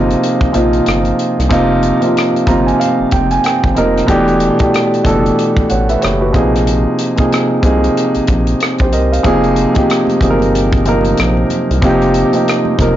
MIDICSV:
0, 0, Header, 1, 4, 480
1, 0, Start_track
1, 0, Tempo, 645161
1, 1118, Time_signature, 4, 2, 24, 8
1, 9646, End_track
2, 0, Start_track
2, 0, Title_t, "Grand piano"
2, 0, Program_c, 0, 0
2, 0, Control_c, 0, 64, 127
2, 0, Note_on_c, 0, 48, 74
2, 0, Note_on_c, 0, 53, 70
2, 0, Note_on_c, 0, 58, 66
2, 0, Note_on_c, 0, 63, 64
2, 0, Note_on_c, 0, 65, 81
2, 0, Note_on_c, 0, 68, 66
2, 360, Note_off_c, 0, 48, 0
2, 363, Note_off_c, 0, 53, 0
2, 365, Note_off_c, 0, 58, 0
2, 367, Note_off_c, 0, 63, 0
2, 370, Note_off_c, 0, 65, 0
2, 393, Note_on_c, 0, 48, 70
2, 398, Note_on_c, 0, 53, 68
2, 402, Note_on_c, 0, 58, 67
2, 408, Note_on_c, 0, 63, 69
2, 415, Note_on_c, 0, 65, 85
2, 1061, Note_off_c, 0, 48, 0
2, 1064, Note_off_c, 0, 53, 0
2, 1066, Note_off_c, 0, 58, 0
2, 1068, Note_off_c, 0, 63, 0
2, 1072, Note_off_c, 0, 65, 0
2, 1112, Note_on_c, 0, 48, 96
2, 1119, Note_on_c, 0, 53, 87
2, 1121, Note_on_c, 0, 58, 83
2, 1125, Note_on_c, 0, 63, 87
2, 1135, Note_on_c, 0, 65, 107
2, 1457, Note_off_c, 0, 48, 0
2, 1461, Note_off_c, 0, 53, 0
2, 1462, Note_off_c, 0, 58, 0
2, 1464, Note_off_c, 0, 63, 0
2, 1469, Note_off_c, 0, 65, 0
2, 1493, Note_on_c, 0, 48, 66
2, 1497, Note_on_c, 0, 53, 57
2, 1501, Note_on_c, 0, 58, 59
2, 1507, Note_on_c, 0, 63, 59
2, 1515, Note_on_c, 0, 65, 69
2, 1808, Note_off_c, 0, 48, 0
2, 1810, Note_off_c, 0, 53, 0
2, 1812, Note_off_c, 0, 58, 0
2, 1815, Note_off_c, 0, 63, 0
2, 1819, Note_off_c, 0, 65, 0
2, 1832, Note_on_c, 0, 48, 71
2, 1838, Note_on_c, 0, 53, 68
2, 1841, Note_on_c, 0, 82, 62
2, 1842, Note_on_c, 0, 58, 68
2, 1849, Note_on_c, 0, 63, 68
2, 1851, Note_on_c, 0, 65, 82
2, 1971, Note_off_c, 0, 82, 0
2, 1981, Note_on_c, 0, 80, 58
2, 2073, Note_off_c, 0, 80, 0
2, 2080, Note_on_c, 0, 77, 68
2, 2303, Note_off_c, 0, 77, 0
2, 2324, Note_on_c, 0, 79, 61
2, 2452, Note_off_c, 0, 79, 0
2, 2463, Note_on_c, 0, 80, 63
2, 2554, Note_off_c, 0, 80, 0
2, 2566, Note_on_c, 0, 79, 63
2, 2722, Note_off_c, 0, 48, 0
2, 2725, Note_off_c, 0, 53, 0
2, 2727, Note_off_c, 0, 58, 0
2, 2731, Note_off_c, 0, 63, 0
2, 2732, Note_off_c, 0, 65, 0
2, 2786, Note_off_c, 0, 79, 0
2, 2790, Note_on_c, 0, 48, 66
2, 2796, Note_on_c, 0, 53, 63
2, 2801, Note_on_c, 0, 75, 60
2, 2802, Note_on_c, 0, 58, 66
2, 2808, Note_on_c, 0, 63, 67
2, 2811, Note_on_c, 0, 70, 78
2, 3016, Note_off_c, 0, 48, 0
2, 3019, Note_off_c, 0, 53, 0
2, 3022, Note_off_c, 0, 58, 0
2, 3023, Note_off_c, 0, 75, 0
2, 3025, Note_off_c, 0, 63, 0
2, 3025, Note_on_c, 0, 47, 99
2, 3027, Note_off_c, 0, 70, 0
2, 3031, Note_on_c, 0, 52, 94
2, 3038, Note_on_c, 0, 57, 88
2, 3042, Note_on_c, 0, 62, 88
2, 3046, Note_on_c, 0, 67, 108
2, 3048, Control_c, 0, 64, 0
2, 3051, Note_off_c, 0, 68, 0
2, 3177, Control_c, 0, 64, 127
2, 3374, Note_off_c, 0, 47, 0
2, 3377, Note_off_c, 0, 52, 0
2, 3380, Note_off_c, 0, 57, 0
2, 3382, Note_off_c, 0, 62, 0
2, 3384, Note_off_c, 0, 67, 0
2, 3414, Note_on_c, 0, 47, 67
2, 3419, Note_on_c, 0, 52, 55
2, 3424, Note_on_c, 0, 57, 59
2, 3427, Note_on_c, 0, 62, 60
2, 3432, Note_on_c, 0, 67, 72
2, 3729, Note_off_c, 0, 47, 0
2, 3731, Note_off_c, 0, 52, 0
2, 3734, Note_off_c, 0, 57, 0
2, 3735, Note_off_c, 0, 62, 0
2, 3738, Note_off_c, 0, 67, 0
2, 3749, Note_on_c, 0, 47, 75
2, 3752, Note_on_c, 0, 52, 68
2, 3757, Note_on_c, 0, 57, 64
2, 3766, Note_on_c, 0, 62, 71
2, 3769, Note_on_c, 0, 69, 84
2, 4197, Note_off_c, 0, 47, 0
2, 4199, Note_off_c, 0, 52, 0
2, 4201, Note_off_c, 0, 57, 0
2, 4206, Note_off_c, 0, 62, 0
2, 4207, Note_off_c, 0, 69, 0
2, 4239, Note_on_c, 0, 78, 57
2, 4244, Note_on_c, 0, 73, 49
2, 4372, Note_off_c, 0, 78, 0
2, 4375, Note_off_c, 0, 73, 0
2, 4383, Note_on_c, 0, 76, 62
2, 4388, Note_on_c, 0, 71, 52
2, 4475, Note_off_c, 0, 76, 0
2, 4475, Note_on_c, 0, 73, 63
2, 4478, Note_off_c, 0, 71, 0
2, 4478, Note_on_c, 0, 67, 56
2, 4610, Note_off_c, 0, 73, 0
2, 4612, Note_off_c, 0, 67, 0
2, 4619, Note_on_c, 0, 71, 55
2, 4624, Note_on_c, 0, 66, 48
2, 4708, Note_on_c, 0, 48, 72
2, 4712, Note_on_c, 0, 53, 70
2, 4717, Note_on_c, 0, 58, 66
2, 4723, Note_on_c, 0, 63, 68
2, 4729, Control_c, 0, 64, 0
2, 4730, Note_on_c, 0, 68, 82
2, 4847, Note_off_c, 0, 71, 0
2, 4849, Note_off_c, 0, 66, 0
2, 4879, Control_c, 0, 64, 127
2, 5269, Note_off_c, 0, 48, 0
2, 5271, Note_off_c, 0, 53, 0
2, 5274, Note_off_c, 0, 58, 0
2, 5277, Note_off_c, 0, 63, 0
2, 5280, Note_off_c, 0, 68, 0
2, 5330, Note_on_c, 0, 48, 64
2, 5335, Note_on_c, 0, 53, 60
2, 5342, Note_on_c, 0, 58, 60
2, 5348, Note_on_c, 0, 63, 58
2, 5352, Note_on_c, 0, 68, 73
2, 5647, Note_off_c, 0, 48, 0
2, 5649, Note_off_c, 0, 53, 0
2, 5652, Note_off_c, 0, 58, 0
2, 5656, Note_off_c, 0, 63, 0
2, 5657, Note_off_c, 0, 68, 0
2, 5671, Note_on_c, 0, 48, 74
2, 5676, Note_on_c, 0, 53, 66
2, 5683, Note_on_c, 0, 58, 68
2, 5687, Note_on_c, 0, 63, 66
2, 5692, Note_on_c, 0, 68, 83
2, 6405, Note_off_c, 0, 68, 0
2, 6544, Note_on_c, 0, 72, 55
2, 6548, Note_on_c, 0, 67, 47
2, 6562, Note_off_c, 0, 48, 0
2, 6564, Note_off_c, 0, 53, 0
2, 6568, Note_off_c, 0, 58, 0
2, 6569, Note_off_c, 0, 63, 0
2, 6636, Note_off_c, 0, 72, 0
2, 6638, Note_off_c, 0, 67, 0
2, 6641, Note_on_c, 0, 75, 60
2, 6647, Note_on_c, 0, 70, 50
2, 6773, Note_off_c, 0, 75, 0
2, 6777, Note_off_c, 0, 70, 0
2, 6787, Note_on_c, 0, 77, 57
2, 6791, Note_on_c, 0, 72, 48
2, 6869, Note_on_c, 0, 48, 94
2, 6874, Note_on_c, 0, 53, 87
2, 6879, Note_on_c, 0, 58, 88
2, 6884, Note_on_c, 0, 63, 84
2, 6888, Control_c, 0, 64, 0
2, 6888, Note_on_c, 0, 68, 107
2, 7011, Note_off_c, 0, 77, 0
2, 7013, Note_off_c, 0, 72, 0
2, 7036, Control_c, 0, 64, 127
2, 7216, Note_off_c, 0, 48, 0
2, 7218, Note_off_c, 0, 53, 0
2, 7221, Note_off_c, 0, 58, 0
2, 7223, Note_off_c, 0, 63, 0
2, 7225, Note_off_c, 0, 68, 0
2, 7254, Note_on_c, 0, 48, 65
2, 7258, Note_on_c, 0, 53, 54
2, 7264, Note_on_c, 0, 58, 56
2, 7268, Note_on_c, 0, 63, 56
2, 7272, Note_on_c, 0, 67, 73
2, 7568, Note_off_c, 0, 48, 0
2, 7571, Note_off_c, 0, 53, 0
2, 7574, Note_off_c, 0, 58, 0
2, 7575, Note_off_c, 0, 63, 0
2, 7577, Note_off_c, 0, 67, 0
2, 7594, Note_on_c, 0, 48, 72
2, 7601, Note_on_c, 0, 53, 67
2, 7605, Note_on_c, 0, 58, 65
2, 7609, Note_on_c, 0, 63, 71
2, 7617, Note_on_c, 0, 68, 65
2, 7664, Note_off_c, 0, 68, 0
2, 7666, Note_on_c, 0, 70, 86
2, 8040, Note_off_c, 0, 48, 0
2, 8043, Note_off_c, 0, 53, 0
2, 8045, Note_off_c, 0, 58, 0
2, 8047, Note_off_c, 0, 63, 0
2, 8076, Note_off_c, 0, 70, 0
2, 8078, Note_on_c, 0, 48, 77
2, 8085, Note_on_c, 0, 53, 70
2, 8090, Note_on_c, 0, 58, 70
2, 8091, Note_on_c, 0, 63, 68
2, 8099, Note_on_c, 0, 70, 85
2, 8743, Note_off_c, 0, 48, 0
2, 8747, Note_off_c, 0, 53, 0
2, 8749, Note_off_c, 0, 58, 0
2, 8750, Note_off_c, 0, 63, 0
2, 8754, Note_off_c, 0, 70, 0
2, 8793, Note_on_c, 0, 48, 96
2, 8797, Note_on_c, 0, 53, 87
2, 8804, Note_on_c, 0, 58, 86
2, 8807, Note_on_c, 0, 63, 90
2, 8815, Note_on_c, 0, 67, 100
2, 9138, Note_off_c, 0, 48, 0
2, 9139, Note_off_c, 0, 53, 0
2, 9143, Note_off_c, 0, 58, 0
2, 9145, Note_off_c, 0, 63, 0
2, 9149, Note_off_c, 0, 67, 0
2, 9174, Note_on_c, 0, 48, 64
2, 9177, Note_on_c, 0, 53, 58
2, 9185, Note_on_c, 0, 58, 59
2, 9188, Note_on_c, 0, 63, 57
2, 9193, Note_on_c, 0, 67, 70
2, 9488, Note_off_c, 0, 48, 0
2, 9490, Note_off_c, 0, 53, 0
2, 9494, Note_off_c, 0, 58, 0
2, 9496, Note_off_c, 0, 63, 0
2, 9498, Note_off_c, 0, 67, 0
2, 9511, Note_on_c, 0, 48, 70
2, 9519, Note_on_c, 0, 53, 69
2, 9524, Note_on_c, 0, 58, 66
2, 9529, Note_on_c, 0, 63, 68
2, 9534, Note_on_c, 0, 70, 79
2, 9646, Note_off_c, 0, 48, 0
2, 9646, Note_off_c, 0, 53, 0
2, 9646, Note_off_c, 0, 58, 0
2, 9646, Note_off_c, 0, 63, 0
2, 9646, Note_off_c, 0, 70, 0
2, 9646, End_track
3, 0, Start_track
3, 0, Title_t, "Analog synth bass"
3, 0, Program_c, 1, 38
3, 0, Note_on_c, 1, 31, 89
3, 115, Note_off_c, 1, 31, 0
3, 312, Note_on_c, 1, 34, 45
3, 348, Note_off_c, 1, 34, 0
3, 413, Note_on_c, 1, 34, 89
3, 600, Note_off_c, 1, 34, 0
3, 652, Note_on_c, 1, 31, 79
3, 840, Note_off_c, 1, 31, 0
3, 1036, Note_on_c, 1, 36, 77
3, 1109, Note_off_c, 1, 36, 0
3, 1128, Note_on_c, 1, 29, 92
3, 1430, Note_off_c, 1, 29, 0
3, 1844, Note_on_c, 1, 31, 90
3, 2035, Note_off_c, 1, 31, 0
3, 2231, Note_on_c, 1, 29, 42
3, 2268, Note_off_c, 1, 29, 0
3, 2332, Note_on_c, 1, 29, 89
3, 2519, Note_off_c, 1, 29, 0
3, 2715, Note_on_c, 1, 32, 81
3, 2788, Note_off_c, 1, 32, 0
3, 2809, Note_on_c, 1, 29, 81
3, 2998, Note_off_c, 1, 29, 0
3, 3046, Note_on_c, 1, 28, 105
3, 3349, Note_off_c, 1, 28, 0
3, 3762, Note_on_c, 1, 30, 85
3, 3953, Note_off_c, 1, 30, 0
3, 4148, Note_on_c, 1, 33, 43
3, 4186, Note_off_c, 1, 33, 0
3, 4252, Note_on_c, 1, 33, 77
3, 4439, Note_off_c, 1, 33, 0
3, 4496, Note_on_c, 1, 30, 82
3, 4725, Note_on_c, 1, 34, 86
3, 4736, Note_off_c, 1, 30, 0
3, 5108, Note_off_c, 1, 34, 0
3, 5683, Note_on_c, 1, 36, 86
3, 5874, Note_off_c, 1, 36, 0
3, 6070, Note_on_c, 1, 34, 44
3, 6107, Note_off_c, 1, 34, 0
3, 6172, Note_on_c, 1, 34, 79
3, 6359, Note_off_c, 1, 34, 0
3, 6554, Note_on_c, 1, 34, 91
3, 6652, Note_on_c, 1, 36, 88
3, 6663, Note_off_c, 1, 34, 0
3, 6840, Note_off_c, 1, 36, 0
3, 6884, Note_on_c, 1, 29, 104
3, 7188, Note_off_c, 1, 29, 0
3, 7602, Note_on_c, 1, 31, 86
3, 8290, Note_off_c, 1, 31, 0
3, 8328, Note_on_c, 1, 34, 93
3, 8517, Note_off_c, 1, 34, 0
3, 8709, Note_on_c, 1, 36, 81
3, 8785, Note_off_c, 1, 36, 0
3, 8803, Note_on_c, 1, 29, 96
3, 9107, Note_off_c, 1, 29, 0
3, 9522, Note_on_c, 1, 29, 88
3, 9646, Note_off_c, 1, 29, 0
3, 9646, End_track
4, 0, Start_track
4, 0, Title_t, "Drums"
4, 79, Note_on_c, 9, 42, 34
4, 153, Note_off_c, 9, 42, 0
4, 175, Note_on_c, 9, 42, 72
4, 249, Note_off_c, 9, 42, 0
4, 304, Note_on_c, 9, 36, 91
4, 378, Note_off_c, 9, 36, 0
4, 403, Note_on_c, 9, 42, 56
4, 477, Note_off_c, 9, 42, 0
4, 545, Note_on_c, 9, 42, 36
4, 619, Note_off_c, 9, 42, 0
4, 642, Note_on_c, 9, 42, 64
4, 659, Note_on_c, 9, 37, 89
4, 716, Note_off_c, 9, 42, 0
4, 733, Note_off_c, 9, 37, 0
4, 780, Note_on_c, 9, 42, 30
4, 855, Note_off_c, 9, 42, 0
4, 887, Note_on_c, 9, 42, 52
4, 961, Note_off_c, 9, 42, 0
4, 1040, Note_on_c, 9, 42, 41
4, 1045, Note_on_c, 9, 37, 29
4, 1115, Note_off_c, 9, 42, 0
4, 1120, Note_off_c, 9, 37, 0
4, 1120, Note_on_c, 9, 36, 103
4, 1126, Note_on_c, 9, 42, 76
4, 1195, Note_off_c, 9, 36, 0
4, 1200, Note_off_c, 9, 42, 0
4, 1360, Note_on_c, 9, 42, 57
4, 1435, Note_off_c, 9, 42, 0
4, 1502, Note_on_c, 9, 42, 43
4, 1576, Note_off_c, 9, 42, 0
4, 1615, Note_on_c, 9, 42, 73
4, 1625, Note_on_c, 9, 37, 93
4, 1689, Note_off_c, 9, 42, 0
4, 1700, Note_off_c, 9, 37, 0
4, 1758, Note_on_c, 9, 42, 31
4, 1833, Note_off_c, 9, 42, 0
4, 1837, Note_on_c, 9, 36, 83
4, 1847, Note_on_c, 9, 42, 64
4, 1911, Note_off_c, 9, 36, 0
4, 1921, Note_off_c, 9, 42, 0
4, 1995, Note_on_c, 9, 42, 33
4, 2069, Note_off_c, 9, 42, 0
4, 2091, Note_on_c, 9, 42, 77
4, 2166, Note_off_c, 9, 42, 0
4, 2317, Note_on_c, 9, 42, 61
4, 2323, Note_on_c, 9, 36, 75
4, 2392, Note_off_c, 9, 42, 0
4, 2398, Note_off_c, 9, 36, 0
4, 2462, Note_on_c, 9, 42, 36
4, 2536, Note_off_c, 9, 42, 0
4, 2560, Note_on_c, 9, 42, 63
4, 2576, Note_on_c, 9, 37, 88
4, 2634, Note_off_c, 9, 42, 0
4, 2651, Note_off_c, 9, 37, 0
4, 2706, Note_on_c, 9, 36, 76
4, 2780, Note_off_c, 9, 36, 0
4, 2802, Note_on_c, 9, 42, 50
4, 2876, Note_off_c, 9, 42, 0
4, 2958, Note_on_c, 9, 42, 42
4, 2963, Note_on_c, 9, 37, 28
4, 3032, Note_off_c, 9, 42, 0
4, 3037, Note_off_c, 9, 37, 0
4, 3038, Note_on_c, 9, 36, 105
4, 3043, Note_on_c, 9, 42, 77
4, 3112, Note_off_c, 9, 36, 0
4, 3117, Note_off_c, 9, 42, 0
4, 3183, Note_on_c, 9, 42, 30
4, 3257, Note_off_c, 9, 42, 0
4, 3275, Note_on_c, 9, 42, 61
4, 3350, Note_off_c, 9, 42, 0
4, 3416, Note_on_c, 9, 42, 45
4, 3423, Note_on_c, 9, 36, 84
4, 3490, Note_off_c, 9, 42, 0
4, 3498, Note_off_c, 9, 36, 0
4, 3529, Note_on_c, 9, 42, 70
4, 3540, Note_on_c, 9, 37, 93
4, 3604, Note_off_c, 9, 42, 0
4, 3614, Note_off_c, 9, 37, 0
4, 3675, Note_on_c, 9, 42, 32
4, 3749, Note_off_c, 9, 42, 0
4, 3755, Note_on_c, 9, 36, 77
4, 3765, Note_on_c, 9, 42, 66
4, 3780, Note_on_c, 9, 37, 32
4, 3830, Note_off_c, 9, 36, 0
4, 3839, Note_off_c, 9, 42, 0
4, 3854, Note_off_c, 9, 37, 0
4, 3914, Note_on_c, 9, 42, 35
4, 3988, Note_off_c, 9, 42, 0
4, 4009, Note_on_c, 9, 42, 73
4, 4083, Note_off_c, 9, 42, 0
4, 4141, Note_on_c, 9, 36, 93
4, 4215, Note_off_c, 9, 36, 0
4, 4238, Note_on_c, 9, 42, 60
4, 4313, Note_off_c, 9, 42, 0
4, 4384, Note_on_c, 9, 42, 38
4, 4458, Note_off_c, 9, 42, 0
4, 4481, Note_on_c, 9, 42, 67
4, 4497, Note_on_c, 9, 37, 88
4, 4555, Note_off_c, 9, 42, 0
4, 4572, Note_off_c, 9, 37, 0
4, 4718, Note_on_c, 9, 36, 86
4, 4725, Note_on_c, 9, 42, 50
4, 4793, Note_off_c, 9, 36, 0
4, 4799, Note_off_c, 9, 42, 0
4, 4878, Note_on_c, 9, 42, 41
4, 4883, Note_on_c, 9, 37, 28
4, 4953, Note_off_c, 9, 42, 0
4, 4958, Note_off_c, 9, 37, 0
4, 4964, Note_on_c, 9, 42, 75
4, 5038, Note_off_c, 9, 42, 0
4, 5198, Note_on_c, 9, 42, 61
4, 5273, Note_off_c, 9, 42, 0
4, 5338, Note_on_c, 9, 42, 45
4, 5345, Note_on_c, 9, 36, 82
4, 5413, Note_off_c, 9, 42, 0
4, 5419, Note_off_c, 9, 36, 0
4, 5450, Note_on_c, 9, 42, 74
4, 5460, Note_on_c, 9, 37, 94
4, 5524, Note_off_c, 9, 42, 0
4, 5535, Note_off_c, 9, 37, 0
4, 5675, Note_on_c, 9, 36, 86
4, 5683, Note_on_c, 9, 42, 65
4, 5749, Note_off_c, 9, 36, 0
4, 5757, Note_off_c, 9, 42, 0
4, 5832, Note_on_c, 9, 42, 37
4, 5907, Note_off_c, 9, 42, 0
4, 5932, Note_on_c, 9, 42, 72
4, 6007, Note_off_c, 9, 42, 0
4, 6061, Note_on_c, 9, 42, 32
4, 6135, Note_off_c, 9, 42, 0
4, 6156, Note_on_c, 9, 42, 62
4, 6163, Note_on_c, 9, 36, 75
4, 6230, Note_off_c, 9, 42, 0
4, 6238, Note_off_c, 9, 36, 0
4, 6302, Note_on_c, 9, 42, 38
4, 6376, Note_off_c, 9, 42, 0
4, 6402, Note_on_c, 9, 42, 64
4, 6419, Note_on_c, 9, 37, 94
4, 6476, Note_off_c, 9, 42, 0
4, 6493, Note_off_c, 9, 37, 0
4, 6536, Note_on_c, 9, 42, 30
4, 6546, Note_on_c, 9, 36, 75
4, 6611, Note_off_c, 9, 42, 0
4, 6621, Note_off_c, 9, 36, 0
4, 6641, Note_on_c, 9, 42, 51
4, 6715, Note_off_c, 9, 42, 0
4, 6796, Note_on_c, 9, 42, 42
4, 6870, Note_off_c, 9, 42, 0
4, 6877, Note_on_c, 9, 36, 99
4, 6877, Note_on_c, 9, 42, 77
4, 6952, Note_off_c, 9, 36, 0
4, 6952, Note_off_c, 9, 42, 0
4, 7021, Note_on_c, 9, 42, 29
4, 7096, Note_off_c, 9, 42, 0
4, 7114, Note_on_c, 9, 42, 58
4, 7188, Note_off_c, 9, 42, 0
4, 7251, Note_on_c, 9, 63, 52
4, 7252, Note_on_c, 9, 42, 44
4, 7262, Note_on_c, 9, 36, 86
4, 7325, Note_off_c, 9, 63, 0
4, 7327, Note_off_c, 9, 42, 0
4, 7337, Note_off_c, 9, 36, 0
4, 7365, Note_on_c, 9, 42, 75
4, 7366, Note_on_c, 9, 62, 28
4, 7376, Note_on_c, 9, 37, 98
4, 7439, Note_off_c, 9, 42, 0
4, 7440, Note_off_c, 9, 62, 0
4, 7450, Note_off_c, 9, 37, 0
4, 7491, Note_on_c, 9, 62, 28
4, 7491, Note_on_c, 9, 63, 68
4, 7511, Note_on_c, 9, 42, 31
4, 7566, Note_off_c, 9, 62, 0
4, 7566, Note_off_c, 9, 63, 0
4, 7586, Note_off_c, 9, 42, 0
4, 7595, Note_on_c, 9, 36, 80
4, 7604, Note_on_c, 9, 42, 65
4, 7604, Note_on_c, 9, 64, 54
4, 7669, Note_off_c, 9, 36, 0
4, 7679, Note_off_c, 9, 42, 0
4, 7679, Note_off_c, 9, 64, 0
4, 7735, Note_on_c, 9, 63, 64
4, 7754, Note_on_c, 9, 42, 36
4, 7809, Note_off_c, 9, 63, 0
4, 7828, Note_off_c, 9, 42, 0
4, 7851, Note_on_c, 9, 42, 76
4, 7925, Note_off_c, 9, 42, 0
4, 7980, Note_on_c, 9, 36, 93
4, 7982, Note_on_c, 9, 42, 31
4, 8054, Note_off_c, 9, 36, 0
4, 8056, Note_off_c, 9, 42, 0
4, 8077, Note_on_c, 9, 42, 62
4, 8151, Note_off_c, 9, 42, 0
4, 8217, Note_on_c, 9, 63, 49
4, 8218, Note_on_c, 9, 42, 37
4, 8291, Note_off_c, 9, 63, 0
4, 8293, Note_off_c, 9, 42, 0
4, 8314, Note_on_c, 9, 42, 65
4, 8331, Note_on_c, 9, 37, 94
4, 8388, Note_off_c, 9, 42, 0
4, 8405, Note_off_c, 9, 37, 0
4, 8461, Note_on_c, 9, 62, 31
4, 8535, Note_off_c, 9, 62, 0
4, 8554, Note_on_c, 9, 64, 59
4, 8557, Note_on_c, 9, 42, 54
4, 8628, Note_off_c, 9, 64, 0
4, 8632, Note_off_c, 9, 42, 0
4, 8712, Note_on_c, 9, 42, 44
4, 8786, Note_off_c, 9, 42, 0
4, 8796, Note_on_c, 9, 36, 107
4, 8800, Note_on_c, 9, 42, 77
4, 8870, Note_off_c, 9, 36, 0
4, 8874, Note_off_c, 9, 42, 0
4, 8941, Note_on_c, 9, 42, 30
4, 9015, Note_off_c, 9, 42, 0
4, 9033, Note_on_c, 9, 42, 62
4, 9108, Note_off_c, 9, 42, 0
4, 9167, Note_on_c, 9, 63, 54
4, 9174, Note_on_c, 9, 42, 43
4, 9242, Note_off_c, 9, 63, 0
4, 9249, Note_off_c, 9, 42, 0
4, 9286, Note_on_c, 9, 42, 76
4, 9297, Note_on_c, 9, 37, 96
4, 9360, Note_off_c, 9, 42, 0
4, 9371, Note_off_c, 9, 37, 0
4, 9413, Note_on_c, 9, 62, 30
4, 9413, Note_on_c, 9, 63, 64
4, 9487, Note_off_c, 9, 62, 0
4, 9487, Note_off_c, 9, 63, 0
4, 9514, Note_on_c, 9, 36, 87
4, 9521, Note_on_c, 9, 64, 56
4, 9523, Note_on_c, 9, 42, 67
4, 9538, Note_on_c, 9, 37, 31
4, 9588, Note_off_c, 9, 36, 0
4, 9596, Note_off_c, 9, 64, 0
4, 9598, Note_off_c, 9, 42, 0
4, 9612, Note_off_c, 9, 37, 0
4, 9646, End_track
0, 0, End_of_file